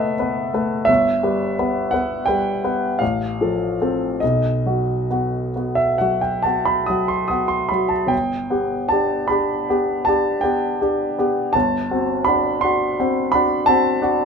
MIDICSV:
0, 0, Header, 1, 2, 480
1, 0, Start_track
1, 0, Tempo, 695249
1, 610, Time_signature, 9, 3, 24, 8
1, 1565, Tempo, 767263
1, 2525, Tempo, 874636
1, 4445, Tempo, 797872
1, 5885, Tempo, 736196
1, 7805, Tempo, 684151
1, 8936, End_track
2, 0, Start_track
2, 0, Title_t, "Grand piano"
2, 0, Program_c, 0, 0
2, 0, Control_c, 0, 64, 127
2, 0, Note_on_c, 0, 30, 56
2, 0, Note_on_c, 0, 57, 45
2, 0, Note_on_c, 0, 59, 43
2, 0, Note_on_c, 0, 69, 66
2, 0, Note_on_c, 0, 71, 45
2, 0, Note_on_c, 0, 75, 62
2, 0, Note_on_c, 0, 76, 76
2, 99, Note_off_c, 0, 57, 0
2, 101, Note_off_c, 0, 71, 0
2, 132, Note_off_c, 0, 59, 0
2, 132, Note_on_c, 0, 59, 39
2, 137, Note_on_c, 0, 71, 51
2, 346, Note_off_c, 0, 59, 0
2, 349, Note_off_c, 0, 71, 0
2, 372, Note_on_c, 0, 57, 45
2, 376, Note_on_c, 0, 71, 49
2, 565, Note_off_c, 0, 30, 0
2, 587, Note_off_c, 0, 76, 0
2, 587, Note_on_c, 0, 76, 72
2, 588, Note_off_c, 0, 57, 0
2, 591, Note_off_c, 0, 71, 0
2, 600, Note_off_c, 0, 75, 0
2, 609, Note_on_c, 0, 31, 55
2, 623, Control_c, 0, 64, 0
2, 628, Note_off_c, 0, 69, 0
2, 728, Control_c, 0, 64, 127
2, 851, Note_on_c, 0, 55, 42
2, 857, Note_on_c, 0, 71, 43
2, 1067, Note_off_c, 0, 55, 0
2, 1070, Note_off_c, 0, 71, 0
2, 1100, Note_on_c, 0, 59, 45
2, 1100, Note_on_c, 0, 71, 46
2, 1308, Note_off_c, 0, 59, 0
2, 1308, Note_off_c, 0, 71, 0
2, 1316, Note_off_c, 0, 76, 0
2, 1318, Note_on_c, 0, 78, 65
2, 1338, Note_on_c, 0, 59, 40
2, 1339, Note_on_c, 0, 71, 44
2, 1546, Note_off_c, 0, 59, 0
2, 1547, Note_off_c, 0, 71, 0
2, 1557, Note_on_c, 0, 79, 70
2, 1560, Note_off_c, 0, 78, 0
2, 1575, Note_on_c, 0, 71, 43
2, 1576, Note_on_c, 0, 55, 39
2, 1774, Note_off_c, 0, 55, 0
2, 1774, Note_off_c, 0, 71, 0
2, 1801, Note_on_c, 0, 71, 47
2, 1802, Note_on_c, 0, 59, 40
2, 2005, Note_off_c, 0, 31, 0
2, 2012, Note_off_c, 0, 71, 0
2, 2013, Note_off_c, 0, 59, 0
2, 2016, Note_on_c, 0, 77, 63
2, 2027, Note_off_c, 0, 79, 0
2, 2030, Note_on_c, 0, 33, 48
2, 2041, Control_c, 0, 64, 0
2, 2143, Control_c, 0, 64, 127
2, 2281, Note_on_c, 0, 53, 34
2, 2286, Note_on_c, 0, 69, 40
2, 2502, Note_off_c, 0, 53, 0
2, 2505, Note_off_c, 0, 69, 0
2, 2533, Note_on_c, 0, 60, 37
2, 2534, Note_on_c, 0, 69, 35
2, 2731, Note_off_c, 0, 33, 0
2, 2734, Note_off_c, 0, 60, 0
2, 2734, Note_off_c, 0, 69, 0
2, 2745, Note_off_c, 0, 77, 0
2, 2745, Note_on_c, 0, 75, 59
2, 2761, Control_c, 0, 64, 0
2, 2763, Note_on_c, 0, 35, 45
2, 2854, Control_c, 0, 64, 127
2, 2997, Note_on_c, 0, 54, 28
2, 3000, Note_on_c, 0, 66, 37
2, 3217, Note_off_c, 0, 54, 0
2, 3219, Note_off_c, 0, 66, 0
2, 3241, Note_on_c, 0, 59, 30
2, 3247, Note_on_c, 0, 66, 38
2, 3460, Note_off_c, 0, 59, 0
2, 3464, Note_off_c, 0, 66, 0
2, 3490, Note_on_c, 0, 59, 33
2, 3495, Note_on_c, 0, 66, 31
2, 3597, Note_on_c, 0, 76, 56
2, 3600, Note_off_c, 0, 75, 0
2, 3710, Note_off_c, 0, 59, 0
2, 3713, Note_off_c, 0, 66, 0
2, 3722, Note_on_c, 0, 78, 57
2, 3724, Note_off_c, 0, 76, 0
2, 3738, Note_on_c, 0, 54, 35
2, 3740, Note_on_c, 0, 66, 37
2, 3849, Note_off_c, 0, 78, 0
2, 3849, Note_on_c, 0, 79, 55
2, 3958, Note_off_c, 0, 54, 0
2, 3959, Note_off_c, 0, 66, 0
2, 3965, Note_on_c, 0, 81, 58
2, 3974, Note_off_c, 0, 79, 0
2, 3981, Note_on_c, 0, 59, 32
2, 3984, Note_on_c, 0, 66, 36
2, 4091, Note_off_c, 0, 81, 0
2, 4091, Note_on_c, 0, 83, 60
2, 4195, Note_off_c, 0, 59, 0
2, 4196, Note_off_c, 0, 66, 0
2, 4206, Note_on_c, 0, 87, 57
2, 4211, Note_off_c, 0, 83, 0
2, 4224, Note_on_c, 0, 54, 30
2, 4227, Note_on_c, 0, 66, 36
2, 4325, Note_off_c, 0, 87, 0
2, 4326, Note_on_c, 0, 84, 54
2, 4427, Note_off_c, 0, 54, 0
2, 4428, Note_off_c, 0, 66, 0
2, 4433, Note_on_c, 0, 87, 57
2, 4442, Note_off_c, 0, 84, 0
2, 4447, Note_on_c, 0, 59, 33
2, 4448, Note_on_c, 0, 66, 35
2, 4554, Note_on_c, 0, 84, 59
2, 4562, Note_off_c, 0, 87, 0
2, 4671, Note_off_c, 0, 59, 0
2, 4672, Note_off_c, 0, 66, 0
2, 4678, Note_on_c, 0, 83, 59
2, 4686, Note_off_c, 0, 84, 0
2, 4695, Note_on_c, 0, 54, 32
2, 4698, Note_on_c, 0, 66, 33
2, 4798, Note_on_c, 0, 81, 53
2, 4809, Note_off_c, 0, 83, 0
2, 4906, Note_on_c, 0, 31, 44
2, 4912, Note_off_c, 0, 54, 0
2, 4913, Note_off_c, 0, 66, 0
2, 4915, Note_on_c, 0, 79, 66
2, 4917, Note_off_c, 0, 35, 0
2, 4926, Note_off_c, 0, 81, 0
2, 4948, Control_c, 0, 64, 0
2, 5047, Control_c, 0, 64, 127
2, 5169, Note_on_c, 0, 59, 32
2, 5173, Note_on_c, 0, 67, 36
2, 5384, Note_off_c, 0, 59, 0
2, 5386, Note_off_c, 0, 67, 0
2, 5399, Note_off_c, 0, 79, 0
2, 5399, Note_on_c, 0, 81, 63
2, 5416, Note_on_c, 0, 62, 33
2, 5418, Note_on_c, 0, 67, 40
2, 5628, Note_off_c, 0, 62, 0
2, 5629, Note_off_c, 0, 67, 0
2, 5634, Note_on_c, 0, 83, 59
2, 5643, Note_off_c, 0, 81, 0
2, 5649, Note_on_c, 0, 62, 38
2, 5655, Note_on_c, 0, 67, 42
2, 5861, Note_off_c, 0, 62, 0
2, 5864, Note_off_c, 0, 67, 0
2, 5888, Note_on_c, 0, 59, 38
2, 5889, Note_on_c, 0, 67, 42
2, 6110, Note_off_c, 0, 59, 0
2, 6111, Note_off_c, 0, 67, 0
2, 6116, Note_on_c, 0, 81, 66
2, 6125, Note_off_c, 0, 83, 0
2, 6135, Note_on_c, 0, 62, 34
2, 6139, Note_on_c, 0, 67, 40
2, 6350, Note_off_c, 0, 62, 0
2, 6352, Note_off_c, 0, 67, 0
2, 6352, Note_on_c, 0, 79, 61
2, 6364, Note_off_c, 0, 81, 0
2, 6368, Note_on_c, 0, 59, 37
2, 6370, Note_on_c, 0, 67, 37
2, 6585, Note_off_c, 0, 59, 0
2, 6586, Note_off_c, 0, 67, 0
2, 6616, Note_on_c, 0, 67, 38
2, 6617, Note_on_c, 0, 62, 35
2, 6832, Note_off_c, 0, 62, 0
2, 6832, Note_off_c, 0, 67, 0
2, 6857, Note_on_c, 0, 59, 41
2, 6862, Note_on_c, 0, 67, 43
2, 7050, Note_off_c, 0, 31, 0
2, 7069, Note_off_c, 0, 59, 0
2, 7072, Note_off_c, 0, 67, 0
2, 7080, Note_on_c, 0, 81, 69
2, 7081, Note_off_c, 0, 79, 0
2, 7098, Note_on_c, 0, 31, 52
2, 7103, Control_c, 0, 64, 0
2, 7222, Control_c, 0, 64, 127
2, 7331, Note_on_c, 0, 66, 40
2, 7332, Note_on_c, 0, 60, 35
2, 7544, Note_off_c, 0, 60, 0
2, 7544, Note_off_c, 0, 66, 0
2, 7549, Note_on_c, 0, 83, 69
2, 7559, Note_off_c, 0, 81, 0
2, 7569, Note_on_c, 0, 62, 39
2, 7570, Note_on_c, 0, 66, 41
2, 7782, Note_off_c, 0, 62, 0
2, 7782, Note_off_c, 0, 66, 0
2, 7787, Note_on_c, 0, 84, 72
2, 7795, Note_off_c, 0, 83, 0
2, 7801, Note_on_c, 0, 62, 41
2, 7807, Note_on_c, 0, 66, 44
2, 8027, Note_off_c, 0, 62, 0
2, 8030, Note_off_c, 0, 66, 0
2, 8057, Note_on_c, 0, 60, 42
2, 8059, Note_on_c, 0, 66, 47
2, 8275, Note_off_c, 0, 60, 0
2, 8276, Note_off_c, 0, 66, 0
2, 8281, Note_on_c, 0, 83, 74
2, 8288, Note_off_c, 0, 84, 0
2, 8299, Note_on_c, 0, 62, 43
2, 8300, Note_on_c, 0, 66, 46
2, 8512, Note_off_c, 0, 62, 0
2, 8512, Note_off_c, 0, 66, 0
2, 8522, Note_on_c, 0, 81, 84
2, 8526, Note_off_c, 0, 83, 0
2, 8540, Note_on_c, 0, 60, 45
2, 8541, Note_on_c, 0, 66, 44
2, 8747, Note_off_c, 0, 60, 0
2, 8747, Note_off_c, 0, 66, 0
2, 8772, Note_on_c, 0, 62, 47
2, 8780, Note_on_c, 0, 66, 48
2, 8936, Note_off_c, 0, 31, 0
2, 8936, Note_off_c, 0, 62, 0
2, 8936, Note_off_c, 0, 66, 0
2, 8936, Note_off_c, 0, 81, 0
2, 8936, End_track
0, 0, End_of_file